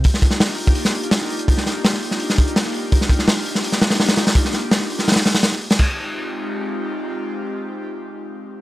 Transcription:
<<
  \new Staff \with { instrumentName = "Analog synth pad" } { \time 4/4 \key f \dorian \tempo 4 = 167 <bes d' ees' f' g'>4. <bes d' ees' f' g'>4 <bes d' ees' f' g'>4. | <bes d' ees' f' g'>4. <bes d' ees' f' g'>4 <bes d' ees' f' g'>4. | <bes d' ees' f' g'>4. <bes d' ees' f' g'>4 <bes d' ees' f' g'>4. | <bes d' ees' f' g'>4. <bes d' ees' f' g'>4 r4. |
<aes c' ees' f' g'>1~ | <aes c' ees' f' g'>1 | }
  \new DrumStaff \with { instrumentName = "Drums" } \drummode { \time 4/4 <hho bd>16 sn16 <hho bd>16 sn16 <hho sn>16 sn16 hho16 bd16 hho16 sn16 hho16 hh16 <hho sn>16 sn16 hho16 hh16 | <hho bd>16 sn16 <hho sn>8 <hho sn>16 sn16 hho16 sn16 hho16 sn16 <hho bd>16 hh16 <hho sn>16 sn16 hho8 | <hho bd>16 sn16 <hho bd>16 sn16 <hho sn>16 sn16 hho16 sn16 hho16 sn16 <hho sn>16 <hho sn>16 <hho sn>16 <hho sn>16 <hho sn>16 <hho sn>16 | <hho bd>16 sn16 <hho sn>8 <hho sn>16 sn16 hho16 sn16 <hho sn>32 <hho sn>32 <hho sn>16 <hho sn>16 <hho sn>16 <hho sn>16 sn16 hho16 <hho sn>16 |
<cymc bd>4 r4 r4 r4 | r4 r4 r4 r4 | }
>>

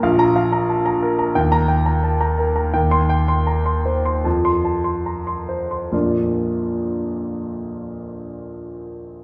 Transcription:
<<
  \new Staff \with { instrumentName = "Grand piano" } { \time 4/4 \key bes \major \tempo 4 = 76 << { r16 bes''8 r4. bes''8 r4 r16 | r16 c'''8 r4. c'''8 r4 r16 | <bes,, f, f bes d' f'>1 | } \\ { f''8 f''16 bes''16 a''16 bes''16 bes'16 bes''16 g''8 g''16 bes''16 a''16 bes''16 bes'16 bes''16 | g''8 g''16 c'''16 bes''16 c'''16 c''16 c'''16 a''8 a''16 c'''16 bes''16 c'''16 c''16 c'''16 | r1 | } >> }
  \new Staff \with { instrumentName = "Grand piano" } { \clef bass \time 4/4 \key bes \major bes,,2 ees,2 | ees,2 f,2 | r1 | }
>>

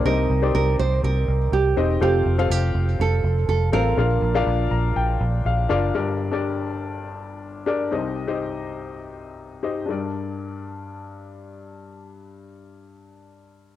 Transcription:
<<
  \new Staff \with { instrumentName = "Nylon-string guitar" } { \time 4/4 \key g \minor \tempo 4 = 122 bes'4 bes'8 c''8 bes'4 g'4 | g'8. f'16 g'4 a'4 a'8 bes'8~ | bes'2. r4 | r1 |
r1 | r1 | r1 | }
  \new Staff \with { instrumentName = "Upright piano" } { \time 4/4 \key g \minor <c' ees' g' c'' ees''>8 r16 <c' ees' g' c'' d''>4. r4 r16 <c' ees' g' c'' ees''>16 r16 | <c' f' a' c'' f''>8 r16 <c' f' a' c'' f''>4. r4 r16 <c' f' a' c'' f''>16 r16 | <d' f' bes' d'' f''>8 r16 <d' f' bes' d'' f''>4. r4 r16 <d' f' bes' d''>16 r16 | <d' g' bes' d''>8 r16 <d' g' bes' d''>4. r4 r16 <d' g' bes' d''>16 r16 |
<ees' g' c'' ees''>8 r16 <ees' g' c'' ees''>4. r4 r16 <ees' g' c'' ees''>16 r16 | <d' g' bes' d''>1~ | <d' g' bes' d''>1 | }
  \new Staff \with { instrumentName = "Upright piano" } { \clef bass \time 4/4 \key g \minor c4. r2 r8 | r1 | bes,4. bes''8 g''4 f''8 f''8 | <g,, g,>1 |
<c, c>1 | g,1~ | g,1 | }
  \new Staff \with { instrumentName = "Fingered electric bass" } { \clef bass \time 4/4 \key g \minor c,8 c,8 c,8 c,8 c,8 c,8 c,8 e,,8 | f,,8 f,,8 f,,8 f,,8 f,,8 f,,8 f,,8 a,,8 | bes,,8 bes,,8 bes,,8 bes,,8 bes,,8 bes,,8 bes,,8 fis,,8 | r1 |
r1 | r1 | r1 | }
>>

